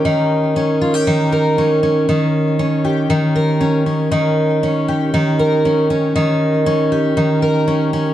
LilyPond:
\new Staff \with { instrumentName = "Twelve-string acoustic guitar" } { \time 4/4 \key ees \mixolydian \tempo 4 = 118 ees4 des'8 f'16 g'16 ees8 bes'8 des'8 des'8 | ees4 des'8 g'8 ees8 bes'8 des'8 des'8 | ees4 des'8 g'8 ees8 bes'8 des'8 des'8 | ees4 des'8 g'8 ees8 bes'8 des'8 des'8 | }